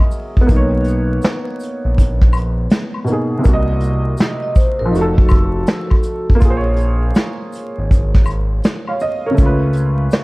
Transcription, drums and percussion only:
0.11 open hi-hat, shaker
0.37 kick
0.49 kick, closed hi-hat, shaker
0.84 closed hi-hat, shaker
1.22 snare, closed hi-hat, shaker
1.60 closed hi-hat, shaker
1.98 kick, closed hi-hat, shaker
2.22 kick, snare
2.33 closed hi-hat, high woodblock, shaker
2.70 snare, closed hi-hat, shaker
2.94 high woodblock
3.07 closed hi-hat, shaker
3.44 kick, closed hi-hat, shaker
3.80 closed hi-hat, shaker
4.17 snare, closed hi-hat, shaker
4.55 kick, shaker
4.59 closed hi-hat
4.95 closed hi-hat, shaker
5.18 kick
5.29 kick, closed hi-hat, high woodblock, shaker
5.67 snare, closed hi-hat, shaker
5.90 kick, high woodblock
6.03 closed hi-hat, shaker
6.30 kick
6.41 kick, closed hi-hat, shaker
6.76 closed hi-hat
6.80 shaker
7.15 snare, closed hi-hat, shaker
7.53 closed hi-hat, shaker
7.91 kick, closed hi-hat, shaker
8.14 kick, snare
8.26 high woodblock, shaker
8.30 closed hi-hat
8.63 snare, closed hi-hat, shaker
8.87 high woodblock
9.00 open hi-hat, shaker
9.38 kick, closed hi-hat, shaker
9.73 closed hi-hat, shaker
10.11 snare, closed hi-hat, shaker

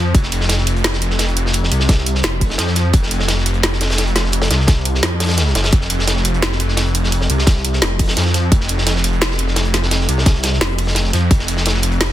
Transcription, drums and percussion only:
0.15 kick, closed hi-hat
0.23 snare
0.32 closed hi-hat
0.41 snare
0.49 snare, closed hi-hat
0.57 snare
0.67 closed hi-hat
0.76 closed hi-hat
0.84 snare, closed hi-hat
0.93 snare
1.02 closed hi-hat
1.10 snare
1.19 snare, closed hi-hat
1.28 closed hi-hat
1.37 closed hi-hat
1.46 snare
1.53 closed hi-hat
1.63 snare
1.72 closed hi-hat
1.80 snare
1.89 kick, snare, closed hi-hat
1.97 snare
2.06 closed hi-hat
2.15 snare
2.23 snare, closed hi-hat
2.41 kick, closed hi-hat, open hi-hat
2.50 snare
2.58 snare, closed hi-hat
2.67 snare
2.75 snare, closed hi-hat
2.93 kick, closed hi-hat
3.03 snare
3.11 closed hi-hat
3.19 snare
3.28 snare, closed hi-hat
3.38 snare
3.46 closed hi-hat
3.54 closed hi-hat
3.63 snare, closed hi-hat
3.73 snare
3.81 snare, closed hi-hat
3.90 snare, closed hi-hat
3.98 snare, closed hi-hat
4.07 closed hi-hat
4.16 snare, closed hi-hat
4.25 snare
4.32 closed hi-hat
4.42 snare, closed hi-hat
4.51 snare, closed hi-hat
4.60 snare
4.68 kick, snare, closed hi-hat
4.77 snare
4.85 closed hi-hat
4.94 snare
5.03 snare, closed hi-hat
5.20 snare, closed hi-hat
5.24 snare, closed hi-hat
5.29 snare, closed hi-hat
5.37 snare, closed hi-hat
5.46 snare
5.55 snare, closed hi-hat
5.64 snare, closed hi-hat
5.72 kick, closed hi-hat
5.81 snare
5.90 closed hi-hat
5.99 snare
6.07 snare, closed hi-hat
6.16 snare
6.25 closed hi-hat
6.34 closed hi-hat
6.42 snare, closed hi-hat
6.52 snare
6.60 closed hi-hat
6.68 snare
6.77 snare, closed hi-hat
6.86 closed hi-hat
6.95 closed hi-hat
7.04 snare
7.12 closed hi-hat
7.21 snare
7.30 closed hi-hat
7.38 snare
7.47 kick, snare, closed hi-hat
7.56 snare
7.65 closed hi-hat
7.73 snare
7.82 snare, closed hi-hat
7.99 kick, closed hi-hat, open hi-hat
8.08 snare
8.17 snare, closed hi-hat
8.25 snare
8.34 snare, closed hi-hat
8.52 kick, closed hi-hat
8.60 snare
8.68 closed hi-hat
8.78 snare
8.87 snare, closed hi-hat
8.96 snare
9.04 closed hi-hat
9.13 closed hi-hat
9.22 snare, closed hi-hat
9.31 snare
9.39 closed hi-hat
9.47 snare
9.56 snare, closed hi-hat
9.65 closed hi-hat
9.74 snare, closed hi-hat
9.82 snare
9.91 snare, closed hi-hat
10.00 snare
10.09 closed hi-hat
10.18 snare
10.26 kick, snare, closed hi-hat
10.34 snare
10.43 snare, closed hi-hat
10.53 snare
10.61 snare, closed hi-hat
10.70 closed hi-hat
10.78 closed hi-hat, open hi-hat
10.87 snare
10.95 snare, closed hi-hat
11.04 snare
11.13 snare, closed hi-hat
11.31 kick, closed hi-hat
11.39 snare
11.48 closed hi-hat
11.57 snare
11.66 snare, closed hi-hat
11.74 snare
11.82 closed hi-hat
11.92 closed hi-hat
12.01 snare, closed hi-hat

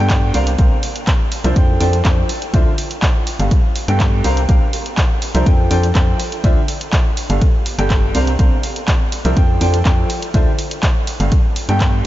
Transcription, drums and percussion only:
0.10 kick, clap, closed hi-hat, ride
0.34 open hi-hat, ride
0.47 closed hi-hat
0.58 kick, closed hi-hat, ride
0.83 open hi-hat, ride
0.96 closed hi-hat
1.07 kick, clap, closed hi-hat, ride
1.32 open hi-hat, ride
1.44 closed hi-hat
1.56 kick, closed hi-hat, ride
1.81 open hi-hat, ride
1.93 closed hi-hat
2.05 kick, clap, closed hi-hat, ride
2.29 open hi-hat, ride
2.42 closed hi-hat
2.54 kick, closed hi-hat, ride
2.78 open hi-hat, ride
2.91 closed hi-hat
3.02 kick, clap, closed hi-hat, ride
3.27 open hi-hat, ride
3.40 closed hi-hat
3.51 kick, closed hi-hat, ride
3.76 open hi-hat, ride
3.88 closed hi-hat
4.00 kick, clap, closed hi-hat, ride
4.24 open hi-hat, ride
4.37 closed hi-hat
4.49 kick, closed hi-hat, ride
4.73 open hi-hat, ride
4.86 closed hi-hat
4.98 kick, clap, closed hi-hat, ride
5.22 open hi-hat, ride
5.35 closed hi-hat
5.46 kick, closed hi-hat, ride
5.71 open hi-hat, ride
5.83 closed hi-hat
5.95 kick, clap, closed hi-hat, ride
6.20 open hi-hat, ride
6.32 closed hi-hat
6.44 kick, closed hi-hat, ride
6.68 open hi-hat, ride
6.81 closed hi-hat
6.93 kick, clap, closed hi-hat, ride
7.17 open hi-hat, ride
7.30 closed hi-hat
7.41 kick, closed hi-hat, ride
7.66 open hi-hat, ride
7.79 closed hi-hat
7.90 kick, clap, closed hi-hat, ride
8.15 open hi-hat, ride
8.27 closed hi-hat
8.39 kick, closed hi-hat, ride
8.63 open hi-hat, ride
8.76 closed hi-hat
8.88 kick, clap, closed hi-hat, ride
9.12 open hi-hat, ride
9.25 closed hi-hat
9.37 kick, closed hi-hat, ride
9.61 open hi-hat, ride
9.74 closed hi-hat
9.85 kick, clap, closed hi-hat, ride
10.10 open hi-hat, ride
10.22 closed hi-hat
10.34 kick, closed hi-hat, ride
10.59 open hi-hat, ride
10.71 closed hi-hat
10.83 kick, clap, closed hi-hat, ride
11.07 open hi-hat, ride
11.20 closed hi-hat
11.32 kick, closed hi-hat, ride
11.56 open hi-hat, ride
11.69 closed hi-hat
11.80 kick, clap, closed hi-hat, ride

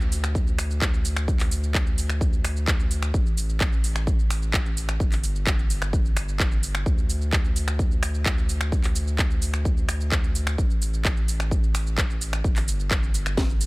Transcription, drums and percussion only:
0.01 shaker
0.12 open hi-hat, shaker
0.24 finger snap, shaker
0.35 kick, shaker
0.47 shaker
0.58 finger snap, open hi-hat, shaker
0.70 shaker
0.82 kick, clap, shaker
0.94 shaker
1.05 open hi-hat, shaker
1.17 finger snap, shaker
1.28 kick, shaker
1.40 clap, open hi-hat, shaker
1.51 open hi-hat, shaker
1.63 shaker
1.75 kick, clap, shaker
1.87 shaker
1.98 open hi-hat, shaker
2.10 finger snap, shaker
2.21 kick, shaker
2.33 shaker
2.45 finger snap, open hi-hat, shaker
2.56 shaker
2.68 kick, clap, shaker
2.80 shaker
2.91 open hi-hat, shaker
3.02 finger snap, shaker
3.14 kick, shaker
3.26 shaker
3.37 open hi-hat, shaker
3.49 shaker
3.61 kick, clap, shaker
3.73 shaker
3.84 open hi-hat, shaker
3.96 finger snap, shaker
4.07 kick, shaker
4.19 shaker
4.30 finger snap, open hi-hat, shaker
4.43 shaker
4.54 kick, clap, shaker
4.66 shaker
4.77 open hi-hat, shaker
4.89 finger snap, shaker
5.00 kick, shaker
5.12 clap, open hi-hat, shaker
5.24 open hi-hat, shaker
5.36 shaker
5.47 kick, clap, shaker
5.59 shaker
5.70 open hi-hat, shaker
5.82 finger snap, shaker
5.93 kick, shaker
6.05 shaker
6.17 finger snap, open hi-hat, shaker
6.28 shaker
6.40 kick, clap, shaker
6.52 shaker
6.63 open hi-hat, shaker
6.75 finger snap, shaker
6.86 kick, shaker
6.98 shaker
7.10 open hi-hat, shaker
7.21 shaker
7.33 kick, clap, shaker
7.45 shaker
7.56 open hi-hat, shaker
7.68 finger snap, shaker
7.79 kick, shaker
7.91 shaker
8.03 finger snap, open hi-hat, shaker
8.15 shaker
8.26 kick, clap, shaker
8.38 shaker
8.49 open hi-hat, shaker
8.61 finger snap, shaker
8.72 kick, shaker
8.84 clap, open hi-hat, shaker
8.95 open hi-hat, shaker
9.07 shaker
9.19 kick, clap, shaker
9.31 shaker
9.42 open hi-hat, shaker
9.54 finger snap, shaker
9.65 kick, shaker
9.77 shaker
9.89 finger snap, open hi-hat, shaker
10.01 shaker
10.12 kick, clap, shaker
10.24 shaker
10.35 open hi-hat, shaker
10.47 finger snap, shaker
10.58 kick, shaker
10.70 shaker
10.82 open hi-hat, shaker
10.94 shaker
11.05 kick, clap, shaker
11.17 shaker
11.28 open hi-hat, shaker
11.40 finger snap, shaker
11.51 kick, shaker
11.64 shaker
11.75 finger snap, open hi-hat, shaker
11.87 shaker
11.98 kick, clap, shaker
12.10 shaker
12.21 open hi-hat, shaker
12.33 finger snap, shaker
12.44 kick, shaker
12.56 clap, open hi-hat, shaker
12.68 open hi-hat, shaker
12.80 shaker
12.91 kick, clap, shaker
13.03 shaker
13.14 open hi-hat, shaker
13.26 finger snap, shaker
13.37 kick, snare, shaker
13.50 shaker
13.61 open hi-hat, shaker

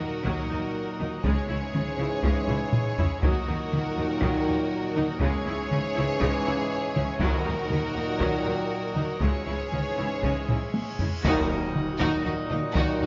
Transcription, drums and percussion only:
0.25 taiko
1.00 taiko mid
1.24 taiko
1.75 taiko mid
2.24 taiko
2.48 taiko low-mid
2.73 taiko low-mid
2.98 taiko low
3.23 taiko
3.73 taiko mid
4.22 taiko
4.96 taiko mid
5.20 taiko
5.71 taiko mid
6.21 taiko
6.96 taiko mid
7.20 taiko
7.70 taiko mid
8.20 taiko
8.96 taiko mid
9.21 taiko
9.72 taiko mid
10.23 taiko
10.49 taiko low-mid
10.74 taiko high
10.99 taiko low
11.25 taiko
11.75 taiko mid
12.00 taiko
12.51 taiko mid
12.75 taiko

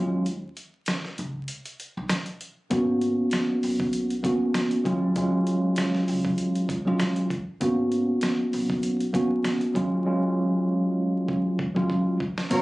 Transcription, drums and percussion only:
0.26 closed hi-hat
0.57 closed hi-hat
0.86 cross-stick, snare, closed hi-hat
1.05 snare
1.18 closed hi-hat
1.48 closed hi-hat
1.65 closed hi-hat
1.80 closed hi-hat
2.09 cross-stick, snare, closed hi-hat
2.26 closed hi-hat
2.41 closed hi-hat
2.71 kick, closed hi-hat
3.02 closed hi-hat
3.31 cross-stick, snare, closed hi-hat
3.63 open hi-hat
3.80 kick
3.93 closed hi-hat
4.10 closed hi-hat
4.24 kick, closed hi-hat
4.54 cross-stick, snare, closed hi-hat
4.71 closed hi-hat
4.85 kick, closed hi-hat
5.16 kick, closed hi-hat
5.47 closed hi-hat
5.76 cross-stick, snare, closed hi-hat
5.95 snare
6.08 open hi-hat
6.25 kick
6.38 closed hi-hat
6.56 closed hi-hat
6.69 kick, closed hi-hat
7.00 cross-stick, snare, closed hi-hat
7.16 closed hi-hat
7.30 kick, closed hi-hat
7.61 kick, closed hi-hat
7.92 closed hi-hat
8.21 cross-stick, snare, closed hi-hat
8.53 open hi-hat
8.70 kick
8.83 closed hi-hat
9.00 closed hi-hat
9.14 kick, closed hi-hat
9.44 cross-stick, snare, closed hi-hat
9.61 closed hi-hat
9.75 kick, closed hi-hat
11.28 kick
11.59 kick
11.76 kick
11.90 kick
12.20 kick
12.38 snare
12.51 kick, closed hi-hat, crash

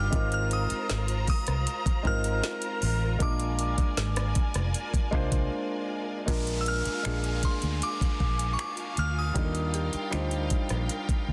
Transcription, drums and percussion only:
0.13 kick, closed hi-hat
0.32 closed hi-hat
0.51 closed hi-hat
0.70 closed hi-hat
0.89 snare, closed hi-hat
1.08 closed hi-hat
1.27 kick, open hi-hat
1.47 cross-stick, closed hi-hat
1.67 closed hi-hat
1.86 kick, closed hi-hat
2.05 kick
2.24 closed hi-hat
2.44 snare, closed hi-hat
2.62 closed hi-hat
2.82 open hi-hat
3.20 kick, closed hi-hat
3.40 closed hi-hat
3.59 closed hi-hat
3.78 kick, closed hi-hat
3.97 snare, closed hi-hat
4.16 cross-stick, closed hi-hat
4.35 kick, closed hi-hat
4.54 cross-stick, closed hi-hat
4.74 closed hi-hat
4.94 kick, closed hi-hat
5.13 kick
5.32 kick, closed hi-hat
6.28 kick, closed hi-hat
6.47 closed hi-hat
6.66 closed hi-hat
6.85 closed hi-hat
7.05 finger snap, closed hi-hat
7.24 closed hi-hat
7.43 kick, closed hi-hat
7.62 closed hi-hat
7.82 closed hi-hat
8.01 kick, closed hi-hat
8.20 kick
8.39 closed hi-hat
8.59 finger snap, closed hi-hat
8.77 closed hi-hat
8.97 closed hi-hat
9.36 kick, closed hi-hat
9.55 closed hi-hat
9.74 closed hi-hat
9.93 closed hi-hat
10.13 finger snap, closed hi-hat
10.31 closed hi-hat
10.50 kick, closed hi-hat
10.69 cross-stick, closed hi-hat
10.89 closed hi-hat
11.09 kick, closed hi-hat

